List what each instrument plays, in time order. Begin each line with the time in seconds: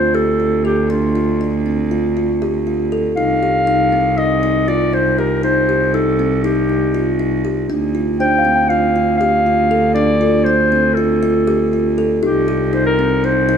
Already playing: cello D2, clarinet C5
0.14 kalimba G4, clarinet A4
0.40 kalimba F4
0.65 clarinet G4, kalimba A4
0.90 kalimba D4, clarinet F4
1.15 kalimba F4
1.41 kalimba D4
1.66 kalimba C4
1.91 kalimba F4
2.17 kalimba F4
2.42 kalimba G4
2.67 kalimba F4
2.92 kalimba A4
3.16 cello C2, kalimba D#4, clarinet F5
3.43 kalimba G4
3.67 kalimba D#4
3.92 kalimba C4
4.18 kalimba D#4, clarinet D#5
4.43 kalimba D#4
4.68 kalimba F4, clarinet D5
4.93 kalimba D#4, clarinet C5
5.18 kalimba G4, clarinet A#4
5.43 kalimba D#4, clarinet C5
5.69 kalimba G4
5.94 kalimba D#4, clarinet A4
6.19 kalimba C4
6.44 kalimba D#4, clarinet G4
6.69 kalimba D#4
6.94 kalimba F4
7.19 kalimba D#4
7.45 kalimba G4
7.69 cello D2, kalimba D4
7.95 kalimba F4
8.20 kalimba D4, celesta C5, clarinet G5
8.39 celesta F5
8.45 kalimba C4
8.56 celesta G5
8.69 kalimba F4, clarinet F5
8.96 kalimba F4
9.18 kalimba G4, clarinet F5
9.46 kalimba F4
9.71 kalimba A4
9.95 kalimba D4, clarinet D5
10.21 kalimba F4, celesta A4
10.44 kalimba D4, clarinet C5
10.72 kalimba C4
10.94 kalimba F4, clarinet A4
11.23 kalimba F4
11.47 kalimba G4
11.73 kalimba F4
11.98 kalimba A4
12.22 cello C2, kalimba D#4, celesta G4, clarinet G4
12.48 kalimba G4
12.73 kalimba D#4, clarinet C5
12.86 clarinet A#4
12.99 kalimba C4
13.24 kalimba D#4, clarinet C5
13.49 kalimba D#4